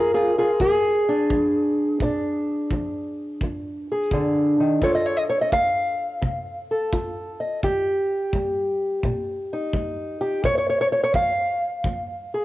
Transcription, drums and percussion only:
0.60 kick
1.30 kick
2.00 kick
2.71 kick
3.41 kick
4.11 kick
4.82 kick
5.52 kick
6.22 kick
6.93 kick
7.63 kick
8.33 kick
9.03 kick
9.73 kick
10.44 kick
11.14 kick
11.84 kick

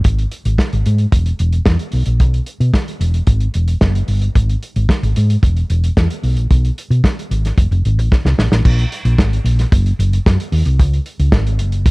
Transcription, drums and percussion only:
0.04 kick, closed hi-hat
0.19 closed hi-hat
0.31 closed hi-hat
0.45 closed hi-hat
0.58 kick, snare
0.73 closed hi-hat
0.86 closed hi-hat
0.98 closed hi-hat
1.12 kick, closed hi-hat
1.26 closed hi-hat
1.39 closed hi-hat
1.53 closed hi-hat
1.66 kick, snare
1.79 closed hi-hat
1.92 open hi-hat
2.06 closed hi-hat
2.20 kick, closed hi-hat
2.34 closed hi-hat
2.46 closed hi-hat
2.61 closed hi-hat
2.74 kick, snare
2.88 closed hi-hat
3.01 closed hi-hat
3.14 closed hi-hat
3.27 kick, closed hi-hat
3.40 closed hi-hat
3.54 closed hi-hat
3.68 closed hi-hat
3.81 kick, snare
3.95 closed hi-hat
4.08 open hi-hat
4.22 closed hi-hat
4.35 kick, closed hi-hat
4.49 closed hi-hat
4.63 closed hi-hat
4.76 closed hi-hat
4.89 kick, snare
5.03 closed hi-hat
5.16 closed hi-hat
5.30 closed hi-hat
5.43 kick, closed hi-hat
5.57 closed hi-hat
5.70 closed hi-hat
5.84 closed hi-hat
5.97 kick, snare
6.10 closed hi-hat
6.23 open hi-hat
6.37 closed hi-hat
6.51 kick, closed hi-hat
6.65 closed hi-hat
6.78 closed hi-hat
6.91 closed hi-hat
7.04 kick, snare
7.19 closed hi-hat
7.31 closed hi-hat
7.45 snare, closed hi-hat
7.58 kick, closed hi-hat
7.72 closed hi-hat
7.85 closed hi-hat
7.99 closed hi-hat
8.12 kick, snare
8.26 snare
8.39 snare
8.52 snare
8.65 kick, crash
8.79 closed hi-hat
8.92 closed hi-hat
9.05 closed hi-hat
9.18 kick, snare
9.33 closed hi-hat
9.46 closed hi-hat
9.59 snare, closed hi-hat
9.72 kick, closed hi-hat
9.86 closed hi-hat
10.00 closed hi-hat
10.13 closed hi-hat
10.26 kick, snare
10.40 closed hi-hat
10.52 open hi-hat
10.65 closed hi-hat
10.79 kick, closed hi-hat
10.94 closed hi-hat
11.06 closed hi-hat
11.20 closed hi-hat
11.32 kick, snare
11.47 closed hi-hat
11.59 closed hi-hat
11.72 closed hi-hat
11.86 kick, closed hi-hat

